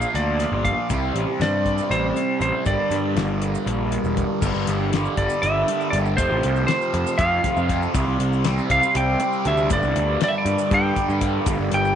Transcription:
Already playing: A#2 F3 A#3 D4 F4 C5 F5
0.02 maracas
0.14 D2 D5, snare, closed hi-hat
0.39 snare, closed hi-hat, maracas
0.52 G1
0.64 F5, kick, closed hi-hat, maracas
0.89 C2 C3 G3 C4 E4, kick, closed hi-hat, maracas
1.14 A1, closed hi-hat, maracas
1.40 G2 D5, snare, closed hi-hat, maracas
1.66 kick, closed hi-hat
1.78 maracas
1.90 A1 C5, closed hi-hat
2.16 closed hi-hat, maracas
2.40 A1 C5, closed hi-hat, maracas
2.65 G1 G2 D3 G3 A#3 D4 A#4 D5, kick, closed hi-hat, maracas
2.90 G2, snare, closed hi-hat, maracas
3.16 G1, snare, closed hi-hat
3.42 closed hi-hat
3.55 maracas
3.66 A#1, closed hi-hat
3.92 closed hi-hat
4.04 E1, maracas
4.17 kick, closed hi-hat, maracas
4.41 G1 G2 D3 G3 A#3 D4 A4, kick, crash, maracas
4.55 G1
4.67 G1, snare, closed hi-hat, maracas
4.92 G2 D3 G3, snare, closed hi-hat
5.05 maracas
5.17 G1 D5, kick, closed hi-hat
5.29 maracas
5.42 G1 E5, closed hi-hat
5.67 D3 G3, closed hi-hat
5.80 maracas
5.90 G1 G2 D3 G3 D5, closed hi-hat
6.06 maracas
6.17 F1 F2 C3 F3 A3 C4 F4 C5, kick, closed hi-hat, maracas
6.31 A1
6.43 C2, closed hi-hat, maracas
6.56 maracas
6.67 F2 C3 F3 C5, snare, closed hi-hat
6.82 maracas
6.94 F2, closed hi-hat
7.07 maracas
7.18 F2 F5, kick, closed hi-hat
7.43 C3 F3, kick, snare, closed hi-hat
7.57 F2, maracas
7.69 F2 C3 F3, kick, snare, closed hi-hat
7.82 maracas
7.94 C2 C3 G3 C4 E4, kick, closed hi-hat, maracas
8.07 C2
8.19 C2, closed hi-hat, maracas
8.33 maracas
8.44 C3 G3 C4, snare, closed hi-hat
8.58 maracas
8.70 C2 F5, kick, closed hi-hat
8.83 maracas
8.95 C2 G5, closed hi-hat
9.20 G3 C4, closed hi-hat
9.33 maracas
9.45 D2 C3 G3 C4 E5, closed hi-hat
9.57 maracas
9.70 G1 G2 D3 G3 A#3 A4 D5, kick, closed hi-hat, maracas
9.82 C2, maracas
9.96 D2, closed hi-hat
10.20 G2 D3 G3 D5, snare, closed hi-hat
10.28 E5
10.38 D5
10.45 G2, closed hi-hat
10.58 maracas
10.71 G2 G5, kick, closed hi-hat
10.95 D3 G3, kick, closed hi-hat, maracas
11.09 G2, maracas
11.21 G2 D3 G3, kick, closed hi-hat, maracas
11.46 G1 G2 D3 G3, kick, closed hi-hat, maracas
11.59 G1
11.72 G1 G5, closed hi-hat, maracas
11.85 maracas

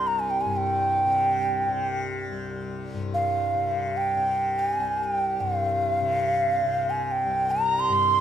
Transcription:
Already playing: C2 G2 C3
0.07 A#5
0.19 G#5
0.30 G5
0.41 G2 G#5
0.57 G5
1.06 C3
1.69 C3
2.32 C2
2.94 G2
3.14 F5
3.54 C3
3.97 G5
4.17 C3
4.59 G5
4.71 G#5
4.79 C2
5.04 G#5
5.15 G5
5.40 G2 F5
6.01 C3
6.65 C3
6.90 G#5
7.11 G5
7.26 C2
7.51 A#5
7.66 A#5
7.80 C6
7.89 G2 C6

